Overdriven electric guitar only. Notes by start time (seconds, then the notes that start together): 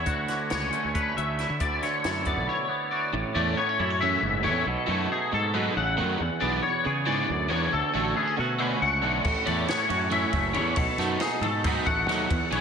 3.13 muted overdriven electric guitar stroke
3.35 E3 A3 C#4 E4
3.59 muted overdriven electric guitar stroke
3.81 muted overdriven electric guitar stroke
4.02 E3 A3 C#4 E4
4.23 muted overdriven electric guitar stroke
4.44 E3 A3 C#4 E4
4.68 muted overdriven electric guitar stroke
4.87 F#3 A3 D#4 F#4
5.10 muted overdriven electric guitar stroke
5.32 muted overdriven electric guitar stroke
5.54 F#3 A3 D#4 F#4
5.77 muted overdriven electric guitar stroke
5.97 F#3 A3 D#4 F#4
6.21 muted overdriven electric guitar stroke
6.41 E3 B3 D4 G#4
6.63 muted overdriven electric guitar stroke
6.85 muted overdriven electric guitar stroke
7.06 E3 B3 D4 G#4
7.29 muted overdriven electric guitar stroke
7.49 E3 B3 D4 G#4
7.74 muted overdriven electric guitar stroke
7.94 D3 A3 D4 F#4
8.15 muted overdriven electric guitar stroke
8.37 muted overdriven electric guitar stroke
8.59 D3 A3 D4 F#4
8.80 muted overdriven electric guitar stroke
9.02 D3 A3 D4 F#4
9.25 muted overdriven electric guitar stroke
9.46 E3 A3 C#4 E4
9.69 muted overdriven electric guitar stroke
9.89 muted overdriven electric guitar stroke
10.10 E3 A3 C#4 E4
10.33 muted overdriven electric guitar stroke
10.54 E3 A3 C#4 E4
10.78 muted overdriven electric guitar stroke
11.00 F#3 A3 D#4 F#4
11.22 muted overdriven electric guitar stroke
11.44 muted overdriven electric guitar stroke
11.67 F#3 A3 D#4 F#4
11.88 muted overdriven electric guitar stroke
12.08 F#3 A3 D#4 F#4
12.31 muted overdriven electric guitar stroke
12.51 E3 B3 D4 G#4